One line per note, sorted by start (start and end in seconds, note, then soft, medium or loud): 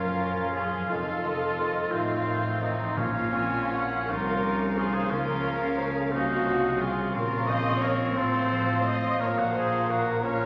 0.00 0.90 F#1 medium
0.00 0.89 F#2 medium
0.00 0.92 A#2 medium
0.00 0.73 F3 soft
0.00 0.87 F3 medium
0.00 0.92 A#3 soft
0.00 0.54 C#4 soft
0.00 0.87 C#4 medium
0.00 0.91 C#4 medium
0.00 0.55 F4 medium
0.00 1.75 F4 soft
0.00 0.37 A#4 soft
0.00 0.55 A#4 medium
0.00 0.20 C#5 soft
0.00 0.85 F5 medium
0.00 0.93 A#5 medium
0.19 0.35 F3 soft
0.19 0.93 C#5 soft
0.19 0.29 C#6 medium
0.38 0.93 A#4 soft
0.55 0.71 F3 medium
0.55 0.92 C#4 soft
0.55 0.88 F4 medium
0.55 0.89 G#4 medium
0.55 0.90 G#4 medium
0.55 0.64 C#6 medium
0.74 1.24 F3 soft
0.89 1.90 F1 medium
0.89 1.90 F2 medium
0.89 2.99 F2 medium
0.89 1.06 D#3 medium
0.89 1.90 F3 medium
0.89 1.90 D#4 medium
0.89 1.93 F4 medium
0.89 1.92 A4 medium
0.89 1.90 A4 medium
0.89 1.23 F5 medium
0.89 0.99 C6 medium
1.08 2.99 C3 soft
1.23 1.39 D#3 soft
1.23 2.79 F3 soft
1.23 1.56 D#5 medium
1.23 1.32 C6 soft
1.42 2.61 D#4 soft
1.58 1.74 D#3 medium
1.58 2.43 C5 soft
1.58 1.91 D#5 medium
1.58 1.66 C6 soft
1.76 3.91 F4 soft
1.91 2.94 A1 medium
1.91 2.94 A2 medium
1.91 2.08 D#3 medium
1.91 2.95 F3 medium
1.91 2.97 A3 medium
1.91 2.60 C4 medium
1.91 2.95 D#4 medium
1.91 2.60 F4 medium
1.91 2.62 F4 medium
1.91 2.26 D#5 soft
1.91 2.95 F5 medium
1.91 2.01 C6 medium
2.09 2.99 C6 medium
2.27 2.42 D#3 medium
2.27 2.99 D#5 soft
2.27 2.35 C6 soft
2.44 2.99 C5 soft
2.60 2.77 D#3 medium
2.60 2.99 C4 medium
2.60 3.00 D#4 soft
2.60 2.97 D#4 medium
2.60 2.68 C6 medium
2.64 2.97 D#4 medium
2.80 3.34 F3 soft
2.96 4.07 A#1 medium
2.96 4.05 A#2 medium
2.96 5.14 A#2 medium
2.96 4.07 A#2 medium
2.96 4.06 F3 medium
2.96 3.12 F3 medium
2.96 3.34 A#3 medium
2.96 4.06 C#4 medium
2.96 4.12 C#4 medium
2.96 4.06 F4 medium
2.96 3.32 F5 medium
2.96 3.04 C#6 medium
3.00 4.11 F4 medium
3.16 4.93 A#3 soft
3.32 3.48 F3 medium
3.32 4.77 F3 medium
3.32 3.71 C4 medium
3.32 3.71 G#5 medium
3.32 3.42 C#6 medium
3.54 4.60 C#4 soft
3.70 3.87 F3 medium
3.70 4.11 C#4 medium
3.70 4.09 C#5 soft
3.70 4.09 F#5 medium
3.70 3.79 C#6 medium
3.92 5.79 F4 medium
4.08 5.11 C2 medium
4.08 5.11 C3 medium
4.08 4.24 F3 medium
4.08 5.09 F3 medium
4.08 5.09 C#4 medium
4.08 5.11 D#4 medium
4.08 4.60 F4 medium
4.08 4.76 A#4 loud
4.08 4.44 C#5 medium
4.08 7.11 F5 medium
4.08 4.16 C#6 medium
4.12 4.79 A#4 medium
4.28 6.13 C#6 medium
4.43 4.58 F3 medium
4.43 5.61 C#5 medium
4.43 4.52 C#6 medium
4.61 5.44 C#4 medium
4.76 4.91 F3 medium
4.76 5.27 F3 medium
4.76 4.95 F4 medium
4.76 4.93 G#4 medium
4.76 4.95 G#4 medium
4.76 4.84 C#6 medium
4.94 7.31 A#3 soft
4.94 5.12 G#4 medium
4.94 5.11 C5 medium
4.94 5.12 C5 medium
5.10 6.10 C#2 medium
5.10 7.16 C#3 medium
5.10 6.10 C#3 medium
5.10 5.25 F3 medium
5.10 6.95 F3 medium
5.10 6.95 C#4 medium
5.10 6.14 C#4 medium
5.10 5.85 F4 medium
5.10 5.77 A#4 medium
5.10 6.13 A#4 medium
5.10 5.17 C#6 medium
5.28 7.48 F3 soft
5.43 5.59 F3 medium
5.43 6.97 C#4 medium
5.43 5.51 C#6 medium
5.62 5.96 C#5 soft
5.77 5.93 F3 medium
5.77 6.63 F4 medium
5.77 5.86 C5 medium
5.77 5.87 C#6 medium
5.87 5.95 A#4 medium
5.95 6.03 G#4 medium
5.95 6.80 C#5 medium
6.04 6.12 A#4 medium
6.11 7.13 C2 medium
6.11 7.14 C3 medium
6.11 6.26 F3 medium
6.11 6.87 A#3 medium
6.11 6.82 D#4 medium
6.11 6.79 F#4 loud
6.11 6.80 F#4 medium
6.11 6.20 C#6 medium
6.11 6.46 C#6 medium
6.31 10.21 F5 medium
6.46 6.61 F3 medium
6.46 6.54 C#6 medium
6.46 8.20 C#6 medium
6.64 7.65 F4 medium
6.77 6.93 F3 medium
6.77 7.14 F4 medium
6.77 7.13 G#4 medium
6.81 7.14 G#4 medium
6.81 7.82 C#5 medium
6.81 6.89 C#6 medium
6.98 8.20 C#4 medium
7.12 8.16 A#1 medium
7.12 8.17 A#2 medium
7.12 8.14 F3 medium
7.12 10.46 F3 medium
7.12 9.16 C4 medium
7.12 8.14 C#4 medium
7.12 7.51 F4 medium
7.12 7.47 A#4 medium
7.12 7.48 A#4 medium
7.12 8.14 F5 medium
7.12 8.13 C#6 medium
7.16 8.21 A#2 medium
7.32 8.20 A#3 medium
7.46 8.50 F3 medium
7.46 7.82 C5 medium
7.46 7.82 D#5 loud
7.46 7.83 D#5 medium
7.66 7.99 F4 soft
7.80 8.19 A#4 medium
7.80 8.16 C#5 medium
7.80 8.20 C#5 medium
7.85 8.18 C#5 medium
8.00 8.68 F4 medium
8.14 9.20 A1 medium
8.14 9.23 A2 medium
8.14 9.20 A2 medium
8.14 8.86 A4 medium
8.14 8.85 C5 loud
8.14 8.86 C5 medium
8.14 9.18 F5 medium
8.14 9.19 C6 medium
8.19 9.19 F3 medium
8.19 9.19 F4 medium
8.35 9.23 A3 medium
8.51 9.36 F3 medium
8.69 9.02 F4 soft
8.84 9.23 C5 medium
8.84 9.22 C5 medium
8.84 9.19 D#5 medium
8.89 9.22 D#5 medium
9.03 9.71 F4 medium
9.18 10.46 A#1 medium
9.18 10.46 A#2 medium
9.18 10.23 F3 medium
9.18 10.25 A#3 medium
9.18 10.22 F4 medium
9.18 9.40 A#4 medium
9.18 9.37 C#5 medium
9.18 10.23 F5 medium
9.18 10.46 A#5 medium
9.22 9.38 C#5 medium
9.36 10.46 F3 soft
9.36 9.55 F#4 medium
9.36 9.54 A#4 medium
9.36 9.55 A#4 medium
9.53 10.46 A#3 medium
9.53 9.88 C5 medium
9.53 9.90 C5 medium
9.58 9.92 G#4 medium
9.72 10.07 F4 soft
9.88 10.25 F#4 medium
9.88 10.24 A#4 medium
9.88 10.25 A#4 medium
9.88 10.46 A#4 soft
10.08 10.46 F4 medium
10.24 10.46 F3 medium
10.24 10.46 C#4 medium
10.24 10.46 A#4 medium
10.24 10.46 C#5 medium
10.24 10.46 F5 medium
10.28 10.46 F4 medium